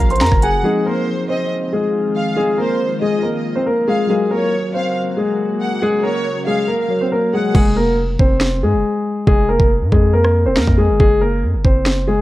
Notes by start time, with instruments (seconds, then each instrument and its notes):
Already playing: ambient pad C#3 F#3 A#3 F#4, tine electric piano F#3 C#4 F#4 A#4
0.00 808-style bass A#1
0.10 grand piano C5 C6, closed hi-hat
0.15 closed hi-hat
0.21 808-style bass F#2, grand piano A#4 A#5, snare, closed hi-hat
0.26 closed hi-hat
0.32 808-style bass F#1, kick, cross-stick
0.42 grand piano G#4 G#5, violin section F#5, closed hi-hat
0.62 ambient pad D#3 G#3 C4 F4, tine electric piano F3 C4 D#4, grand piano G#3 G#4
0.67 tine electric piano G#4
0.85 grand piano A#3 A#4, violin section C5
1.29 grand piano C4 C5, violin section D#5
1.73 grand piano G#3 G#4
2.15 violin section F5
2.37 grand piano G#3 G#4
2.58 grand piano A#3 A#4, violin section C5
3.01 grand piano G#3 G#4, violin section D#5
3.23 grand piano A#3 A#4
3.55 grand piano C4 C5
3.66 grand piano A#3 A#4
3.88 grand piano G#3 G#4, violin section F5
4.07 ambient pad C#3 F#3 A#3 F#4, tine electric piano F#3 F#4 A#4, grand piano G#3 G#4
4.31 grand piano A#3 A#4, violin section C#5
4.74 grand piano C4 C5, violin section F5
5.17 grand piano G#3 G#4
5.60 violin section F#5
5.82 grand piano G#3 G#4
6.03 grand piano A#3 A#4, violin section C#5
6.47 grand piano G#3 G#4, violin section F5
6.68 grand piano A#3 A#4
6.88 tine electric piano F#3 F#4 A#4 C#5
7.01 grand piano C4 C5
7.12 grand piano A#3 A#4
7.33 grand piano G#3 G#4, violin section F#5
7.54 808-style bass F1, grand piano G#3 G#4, kick, crash
7.76 grand piano A#3 A#4
8.19 808-style bass F1, grand piano C4 C5, kick
8.41 snare
8.62 808-style bass G#2, grand piano G#3 G#4
8.73 808-style bass F1
9.27 808-style bass F1, grand piano G#3 G#4, kick
9.49 grand piano A#3 A#4
9.60 808-style bass F1, kick
9.81 808-style bass G#2
9.92 808-style bass F2, grand piano G#3 G#4, kick
10.13 grand piano A#3 A#4
10.24 cross-stick
10.46 808-style bass D#1, grand piano C4 C5
10.57 808-style bass F2, grand piano A#3 A#4, snare
10.67 808-style bass F2, kick
10.78 grand piano G#3 G#4
10.89 808-style bass F#1
11.00 808-style bass F#1, grand piano G#3 G#4, kick
11.21 grand piano A#3 A#4
11.43 808-style bass F#2
11.54 808-style bass F#1
11.65 808-style bass F#1, grand piano C4 C5, kick
11.86 snare
12.08 grand piano G#3 G#4